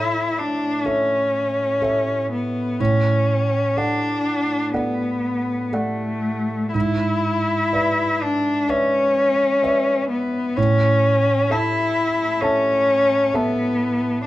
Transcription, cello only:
0.00 0.40 E4 soft
0.38 0.88 D4 soft
0.86 2.30 C#4 soft
2.31 2.82 B3 soft
2.80 3.78 C#4 soft
3.76 4.74 D4 soft
4.75 5.74 B3 soft
5.73 6.73 A3 soft
6.74 8.23 E4 medium
8.22 8.71 D4 soft
8.70 10.09 C#4 medium
10.09 10.58 B3 soft
10.57 11.53 C#4 medium
11.51 12.43 E4 soft
12.41 13.36 C#4 medium
13.34 14.25 B3 medium

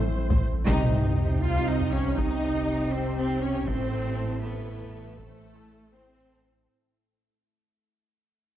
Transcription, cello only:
0.67 1.44 D#4 loud
1.42 1.69 F4 loud
1.68 1.94 D#4 loud
1.92 2.17 C#4 loud
2.17 2.94 D#4 loud
2.93 3.17 C4 loud
3.17 3.44 C4 loud
3.42 3.68 C#4 loud
3.67 4.41 C4 loud
4.42 5.19 B3 loud
5.18 5.95 A3 loud
5.93 6.68 C4 loud

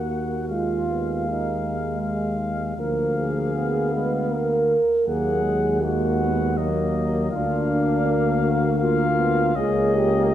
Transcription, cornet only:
0.00 0.46 F#5 soft
0.48 1.98 F5 soft
2.02 2.76 F5 soft
2.77 4.75 F5 soft
5.07 5.78 F#5 soft
5.81 6.59 F#5 soft
6.57 7.31 D#5 medium
7.32 8.75 F5 medium
8.79 9.57 F5 medium
9.56 10.34 D#5 medium

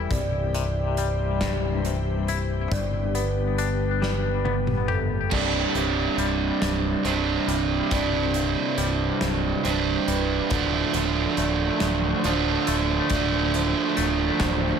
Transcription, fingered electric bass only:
0.11 2.68 C1 medium
2.71 5.28 G1 medium
5.32 5.63 C1 medium
5.75 6.06 C1 medium
6.17 6.49 C1 medium
6.62 6.93 C1 medium
7.04 7.36 C1 medium
7.48 7.79 C1 medium
7.91 8.54 C1 medium
8.77 9.09 C1 medium
9.22 9.53 C1 medium
9.65 9.96 C1 medium
10.08 10.39 C1 medium
10.51 10.82 D1 medium
10.94 11.25 D1 medium
11.37 11.69 D1 medium
11.81 12.12 D1 medium
12.24 12.55 D1 medium
12.68 12.99 D1 medium
13.11 13.73 D1 medium
13.98 14.29 D1 medium
14.40 14.71 D1 medium

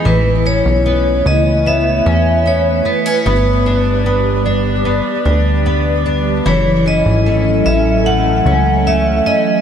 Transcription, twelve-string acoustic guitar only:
0.00 0.49 B3 soft
0.00 0.14 D#4 soft
0.00 0.13 G#4 medium
0.05 3.25 E3 medium
0.46 1.25 C#4 medium
0.86 1.66 B3 medium
1.26 2.05 C#4 medium
1.66 2.45 B3 medium
2.06 2.85 C#4 medium
2.46 2.85 B3 medium
2.85 3.06 B3 medium
3.06 3.34 C#4 soft
3.26 4.05 B3 medium
3.66 4.44 D4 medium
4.06 4.84 B3 medium
4.46 5.24 D4 medium
4.85 5.65 B3 medium
5.25 6.05 D4 medium
5.66 6.54 B3 medium
6.06 6.54 D4 medium
6.46 9.61 E3 medium
6.86 7.65 C#4 medium
7.26 8.05 A3 medium
7.66 8.45 C#4 medium
8.06 8.85 A3 medium
8.46 9.25 C#4 medium
8.87 9.61 A3 medium
9.26 9.61 C#4 medium

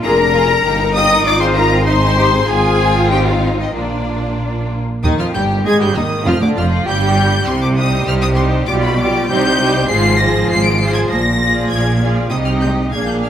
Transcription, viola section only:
0.04 0.91 A#4 loud
0.95 1.25 D#5 loud
1.26 1.32 D5 loud
1.41 1.56 C5 loud
1.56 1.87 A#4 loud
1.86 2.47 C5 loud
2.48 3.09 G#4 loud
3.11 3.26 G4 medium
3.27 3.59 F4 medium
3.58 3.75 D#4 medium
3.75 4.70 D4 medium
5.04 5.18 D#3 loud
5.18 5.25 F3 medium
5.34 5.42 G3 medium
5.65 5.80 G#3 loud
5.80 5.96 G3 medium
5.95 6.26 D#3 medium
6.25 6.41 F3 loud
6.40 6.56 D3 medium
6.56 6.86 F3 medium
6.86 7.47 G3 loud
7.76 8.36 G3 medium
7.76 8.36 D#4 medium
8.37 8.66 G3 medium
8.37 8.67 D#4 medium
8.67 8.98 G3 medium
8.67 8.98 F4 medium
8.99 9.29 G3 medium
8.99 9.29 F4 medium
9.30 9.59 G3 medium
9.30 9.59 D#4 medium
9.60 9.89 G3 medium
9.60 9.90 D#4 medium
9.91 10.19 F3 medium
9.91 10.19 F4 medium
10.20 10.79 F3 medium
10.20 10.79 F4 medium
10.81 11.10 F3 medium
10.81 11.10 F4 medium
11.41 12.00 F3 medium
11.41 12.00 F4 medium
12.01 12.31 F3 medium
12.01 12.31 F4 medium
12.32 12.40 G3 medium
12.32 12.90 D#4 medium
12.63 12.71 G#3 medium
12.94 13.29 A#3 medium
12.94 13.29 D4 medium

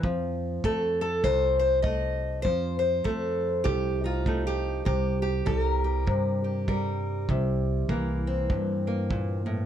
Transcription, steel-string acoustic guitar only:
0.00 2.42 F3 medium
0.00 0.64 C4 medium
0.64 1.84 A3 medium
0.64 1.00 A4 medium
1.01 1.85 A4 medium
1.24 2.42 C3 medium
1.24 1.58 C5 medium
1.59 1.82 C5 medium
1.82 2.42 A3 medium
1.82 2.42 D#5 loud
2.42 4.84 F3 medium
2.42 2.77 C5 loud
2.79 3.64 C5 medium
3.04 4.26 A3 medium
3.04 3.63 A4 loud
3.64 4.84 C3 medium
3.64 4.05 G4 medium
4.04 4.26 D#4 soft
4.04 4.46 F4 medium
4.27 4.84 A3 medium
4.27 4.84 D#4 soft
4.47 4.85 G4 medium
4.85 6.06 C3 medium
4.85 5.21 G4 medium
5.22 5.83 G4 medium
5.46 6.68 G3 medium
5.46 5.60 A4 medium
5.60 6.68 A#4 medium
5.84 6.44 G4 medium
6.07 7.25 C3 medium
6.44 8.27 G4 soft
6.68 7.89 G3 medium
6.68 7.26 A#4 soft
7.29 7.89 C3 medium
7.89 9.66 E3 medium
7.89 8.86 A#3 medium
8.27 9.66 C4 medium
8.49 9.66 G2 medium
8.87 9.66 A#3 medium
9.10 9.45 A#2 medium
9.46 9.66 A2 medium

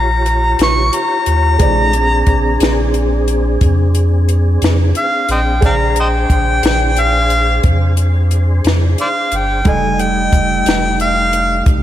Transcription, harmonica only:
0.00 0.59 A#5 medium
0.63 0.97 C#6 medium
0.95 2.92 A#5 loud
4.97 5.29 F5 medium
5.32 5.40 C5 medium
5.32 5.41 D#5 medium
5.32 5.63 G5 medium
5.66 5.74 F5 medium
5.66 5.72 G5 medium
5.66 5.97 A#5 medium
6.00 6.08 C5 medium
6.00 6.07 D#5 medium
6.00 7.01 G5 medium
7.00 7.64 F5 loud
9.01 9.09 C5 medium
9.01 9.08 D5 medium
9.01 9.37 F5 medium
9.36 9.70 G5 medium
9.69 10.02 G#5 medium
10.01 10.97 G5 medium
11.01 11.65 F5 medium

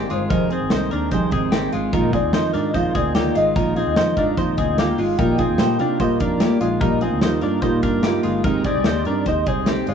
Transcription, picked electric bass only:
0.12 0.28 G1 medium
0.31 0.56 F1 loud
0.62 0.70 G#1 loud
0.72 0.89 C2 medium
0.93 1.09 D#2 medium
1.12 1.29 C2 loud
1.32 1.67 G#1 medium
1.73 1.90 G#1 medium
1.93 2.19 A#1 loud
2.24 2.32 D#2 medium
2.35 2.52 F2 loud
2.55 2.72 G#2 loud
2.75 2.92 F2 medium
2.95 3.30 D2 medium
3.36 3.53 G#1 medium
3.56 3.82 A#1 loud
3.87 3.95 D#2 loud
3.98 4.14 F2 medium
4.17 4.34 G#2 loud
4.37 4.55 F2 medium
4.58 4.93 D2 medium
4.99 5.16 G#1 medium
5.19 5.45 A#1 loud
5.50 5.58 D#2 medium
5.60 5.77 A#2 loud
5.81 5.98 C3 medium
6.00 6.18 A#2 medium
6.20 6.46 F2 medium
6.61 6.79 A#1 medium
6.82 7.08 A#1 loud
7.12 7.21 D2 loud
7.22 7.40 D#2 medium
7.43 7.60 G2 medium
7.62 7.80 A#2 medium
7.83 8.18 G2 medium
8.25 8.42 G1 medium
8.44 8.70 G#1 loud
8.75 8.84 C2 medium
8.86 9.03 D#2 loud
9.06 9.23 G2 loud
9.26 9.44 D#2 medium
9.47 9.81 C2 medium
9.88 9.94 G1 medium

